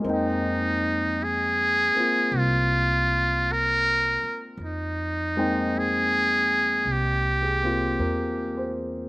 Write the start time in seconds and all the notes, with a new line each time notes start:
0.00 G#3 A#3
0.04 F2 C4 D#4
0.10 D#4 G5
1.24 G#4
1.95 A#3 C4 F4, muted upright bass stroke
2.32 C2
2.38 F4
3.52 A#4
4.23 muted upright bass stroke
4.57 F2
4.64 D#4
5.37 G#3 A#3 C4 D#4 G5
5.79 G#4
6.85 C2
6.92 G4
7.43 G#4
7.62 A#3 C4 F4
7.99 E2 A#4
8.57 C5